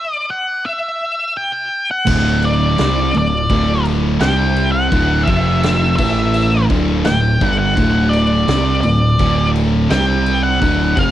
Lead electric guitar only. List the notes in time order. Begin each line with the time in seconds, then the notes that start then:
Already playing: E5
0.14 D5
0.30 F#5
0.66 E5
1.37 G5
1.91 F#5
2.45 D5
3.18 D5
4.21 G5
4.72 F#5
5.23 E5
5.96 E5
7.05 G5
7.45 F#5
7.59 F#5
8.09 D5
8.81 D5
9.91 G5
10.43 F#5
10.99 F5